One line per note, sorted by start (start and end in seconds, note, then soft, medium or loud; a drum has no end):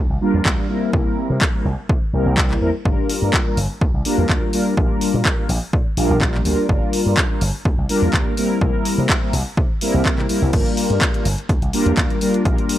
0.10 0.17 C2 medium
0.21 0.43 G3 medium
0.21 0.43 A#3 medium
0.21 0.43 D4 medium
0.21 0.43 F4 medium
0.21 0.43 A#4 loud
0.34 0.41 E2 medium
0.45 0.54 D2 loud
0.45 0.66 G3 medium
0.45 0.67 A#3 medium
0.45 0.67 D4 medium
0.45 0.67 F4 medium
0.45 0.67 A#4 medium
0.45 kick loud
0.45 clap loud
0.69 0.90 G3 medium
0.69 0.90 A#3 medium
0.69 0.91 C4 medium
0.69 0.91 E4 medium
0.69 0.91 A#4 medium
0.92 1.02 C2 medium
0.92 1.51 G3 medium
0.92 1.51 A#3 medium
0.92 1.51 C4 medium
0.92 1.51 E4 medium
0.92 1.51 A#4 medium
0.92 kick loud
1.30 1.37 C3 medium
1.41 kick loud
1.41 clap loud
1.54 1.66 G3 medium
1.54 1.66 A#3 medium
1.54 1.66 C4 medium
1.54 1.66 E4 medium
1.54 1.66 A#4 medium
1.65 1.74 C2 loud
1.89 1.98 C3 medium
1.89 kick loud
2.13 2.22 C2 medium
2.13 2.59 G3 medium
2.13 2.59 A#3 medium
2.13 2.59 C4 medium
2.13 2.59 E4 medium
2.13 2.59 A#4 medium
2.26 2.55 C2 medium
2.37 kick loud
2.37 clap loud
2.51 clap soft
2.61 2.70 E2 medium
2.61 2.69 G3 medium
2.61 2.70 A#3 medium
2.61 2.70 C4 medium
2.61 2.70 E4 medium
2.61 2.70 A#4 loud
2.85 2.94 G1 medium
2.85 3.43 G3 medium
2.85 3.43 A#3 medium
2.85 3.43 D4 medium
2.85 3.43 F4 medium
2.85 3.44 A#4 loud
2.85 kick loud
3.09 open hi-hat loud
3.22 3.29 G2 medium
3.33 kick loud
3.33 clap loud
3.46 3.58 G3 medium
3.46 3.58 A#3 medium
3.46 3.58 D4 medium
3.46 3.58 F4 medium
3.46 3.58 A#4 medium
3.57 3.66 G1 loud
3.57 open hi-hat loud
3.81 3.90 D2 medium
3.81 kick loud
3.94 4.01 C2 medium
4.05 4.26 G3 medium
4.05 4.26 A#3 medium
4.05 4.27 D4 medium
4.05 4.27 F4 medium
4.05 4.27 A#4 loud
4.05 open hi-hat loud
4.18 4.25 E2 medium
4.29 4.38 D2 loud
4.29 4.50 G3 medium
4.29 4.51 A#3 medium
4.29 4.51 D4 medium
4.29 4.51 F4 medium
4.29 4.51 A#4 medium
4.29 kick loud
4.29 clap loud
4.53 4.75 G3 medium
4.53 4.75 A#3 medium
4.53 4.75 D4 medium
4.53 4.75 F4 medium
4.53 4.75 A#4 medium
4.53 open hi-hat loud
4.77 4.86 A#1 medium
4.77 5.35 G3 medium
4.77 5.35 A#3 medium
4.77 5.35 D4 medium
4.77 5.35 F4 medium
4.77 5.36 A#4 medium
4.77 kick loud
5.01 open hi-hat loud
5.14 5.21 A#2 medium
5.25 kick loud
5.25 clap loud
5.38 5.49 G3 medium
5.38 5.50 A#3 medium
5.38 5.50 D4 medium
5.38 5.50 F4 medium
5.38 5.50 A#4 medium
5.49 5.57 A#1 loud
5.49 open hi-hat loud
5.73 5.82 A#2 medium
5.73 kick loud
5.97 6.05 A#1 medium
5.97 6.18 G3 medium
5.97 6.18 A#3 medium
5.97 6.19 D4 medium
5.97 6.19 F4 medium
5.97 6.19 A#4 loud
5.97 open hi-hat loud
6.10 6.39 A#1 medium
6.21 6.42 G3 medium
6.21 6.42 A#3 medium
6.21 6.43 D4 medium
6.21 6.43 F4 medium
6.21 6.43 A#4 medium
6.21 kick medium
6.21 clap loud
6.35 clap soft
6.45 6.54 D2 medium
6.45 6.66 G3 medium
6.45 6.67 A#3 medium
6.45 6.67 D4 medium
6.45 6.67 F4 medium
6.45 6.67 A#4 medium
6.45 open hi-hat loud
6.68 6.78 G1 medium
6.68 7.27 G3 medium
6.68 7.27 A#3 medium
6.68 7.27 D4 medium
6.68 7.27 F4 medium
6.68 7.28 A#4 medium
6.68 kick loud
6.93 open hi-hat medium
7.06 7.13 G2 medium
7.17 kick loud
7.17 clap loud
7.30 7.42 G3 medium
7.30 7.42 A#3 medium
7.30 7.42 D4 medium
7.30 7.42 F4 medium
7.30 7.42 A#4 medium
7.41 7.50 G1 loud
7.41 open hi-hat loud
7.65 7.74 D2 medium
7.65 kick loud
7.78 7.85 C2 medium
7.89 8.11 G3 medium
7.89 8.11 A#3 medium
7.89 8.11 D4 medium
7.89 8.11 F4 medium
7.89 8.11 A#4 loud
7.89 open hi-hat loud
8.02 8.09 E2 loud
8.13 8.22 D2 loud
8.13 8.35 G3 medium
8.13 8.35 A#3 medium
8.13 8.35 D4 medium
8.13 8.35 F4 medium
8.13 8.35 A#4 medium
8.13 kick medium
8.13 clap loud
8.37 8.59 G3 medium
8.37 8.59 A#3 medium
8.37 8.59 C4 medium
8.37 8.59 E4 medium
8.37 8.59 A#4 medium
8.37 open hi-hat loud
8.61 8.70 C2 loud
8.61 9.19 G3 medium
8.61 9.19 A#3 medium
8.61 9.19 C4 medium
8.61 9.19 E4 medium
8.61 9.20 A#4 loud
8.61 kick loud
8.85 open hi-hat loud
8.98 9.05 C3 medium
9.09 kick loud
9.09 clap loud
9.22 9.34 G3 medium
9.22 9.34 A#3 medium
9.22 9.34 C4 medium
9.22 9.34 E4 medium
9.22 9.34 A#4 medium
9.33 9.42 C2 loud
9.33 open hi-hat loud
9.57 9.66 C3 medium
9.57 kick loud
9.81 10.03 G3 medium
9.81 10.03 A#3 medium
9.81 10.03 C4 medium
9.81 10.03 E4 medium
9.81 10.03 A#4 loud
9.81 open hi-hat loud
9.94 10.01 C2 medium
10.05 10.26 G3 medium
10.05 10.27 A#3 medium
10.05 10.27 C4 medium
10.05 10.27 E4 medium
10.05 10.27 A#4 medium
10.05 kick loud
10.05 clap loud
10.18 10.25 C3 medium
10.18 clap soft
10.29 10.50 G3 medium
10.29 10.50 A#3 medium
10.29 10.51 C4 medium
10.29 10.51 E4 medium
10.29 10.51 A#4 medium
10.29 muted slap bass stroke soft
10.29 open hi-hat medium
10.42 10.49 C2 medium
10.52 10.62 G1 medium
10.52 11.11 G3 medium
10.52 11.11 A#3 medium
10.52 11.11 D4 medium
10.52 11.11 F4 medium
10.52 11.11 A#4 loud
10.52 kick loud
10.52 closed hi-hat medium
10.52 crash medium
10.66 closed hi-hat soft
10.77 open hi-hat loud
10.90 10.97 G2 medium
10.90 closed hi-hat soft
11.01 kick loud
11.01 clap loud
11.01 closed hi-hat medium
11.14 11.26 G3 medium
11.14 11.26 A#3 medium
11.14 11.26 D4 medium
11.14 11.26 F4 medium
11.14 11.26 A#4 medium
11.14 closed hi-hat soft
11.25 11.34 G1 medium
11.25 open hi-hat loud
11.38 closed hi-hat soft
11.49 11.58 D2 medium
11.49 kick loud
11.49 closed hi-hat medium
11.62 11.69 C2 medium
11.62 closed hi-hat soft
11.73 11.94 G3 medium
11.73 11.95 A#3 medium
11.73 11.95 D4 medium
11.73 11.95 F4 medium
11.73 11.95 A#4 loud
11.73 open hi-hat loud
11.86 11.93 E2 loud
11.86 closed hi-hat soft
11.97 12.06 D2 loud
11.97 12.18 G3 medium
11.97 12.19 A#3 medium
11.97 12.19 D4 medium
11.97 12.19 F4 medium
11.97 12.19 A#4 medium
11.97 kick loud
11.97 clap loud
11.97 closed hi-hat medium
12.10 closed hi-hat soft
12.21 12.43 G3 medium
12.21 12.43 A#3 medium
12.21 12.43 D4 medium
12.21 12.43 F4 medium
12.21 12.43 A#4 medium
12.21 open hi-hat loud
12.34 closed hi-hat soft
12.45 12.54 A#1 loud
12.45 12.78 G3 medium
12.45 12.78 A#3 medium
12.45 12.78 D4 medium
12.45 12.78 F4 medium
12.45 12.78 A#4 loud
12.45 kick loud
12.45 closed hi-hat medium
12.58 closed hi-hat soft
12.69 open hi-hat loud